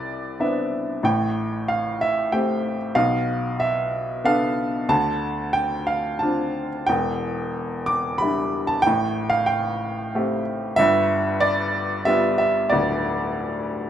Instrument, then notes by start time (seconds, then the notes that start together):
upright piano
Already playing: C2 C3 D5 E5
0.40 B3 C4 D4 E4 E5
1.03 A1 A2 G5
1.68 F5
2.01 E5
2.32 A3 C4 G4 G5
2.95 B1 B2 F5
3.60 E5
4.24 B3 D4 A4 F5
4.89 D2 D3 A5
5.53 G5
5.87 F5
6.19 C4 D4 F4 A5
6.87 E1 E2 G5
7.86 D6
8.18 G3 D4 E4 B5
8.67 A5
8.82 G5
8.86 A1 A2
9.30 F5
9.46 G5
10.15 A3 C4 G4
10.76 G1 G2 E5
11.40 D5
12.05 G3 B3 F4 E5
12.38 E5
12.70 D1 D2 D5